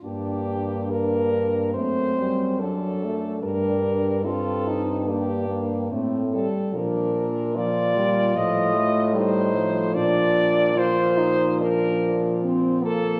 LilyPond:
<<
  \new Staff \with { instrumentName = "French horn" } { \time 4/4 \key g \minor \tempo 4 = 72 g'4 bes'4 c''4 a'4 | bes'4 a'4 g'4 r8 a'8 | bes'4 d''4 ees''4 c''4 | d''4 c''4 bes'4 r8 a'8 | }
  \new Staff \with { instrumentName = "French horn" } { \time 4/4 \key g \minor d'4 d'4 c'4 d'4 | d'4 f'8 ees'8 d'4 c'8 r8 | d'4 f'2 ees'4 | d'4 f'8 ees'8 d'4 c'8 bes8 | }
  \new Staff \with { instrumentName = "French horn" } { \clef bass \time 4/4 \key g \minor bes2 a8 g8 fis8 a8 | g4 c'4 bes8 bes8 a8 g8 | f8 r8 f8 g8 f8 a8 g8 f8~ | f4 f2. | }
  \new Staff \with { instrumentName = "French horn" } { \clef bass \time 4/4 \key g \minor g,2 fis,2 | g,2. a,8 r8 | bes,2 a,2 | bes,2.~ bes,8 r8 | }
>>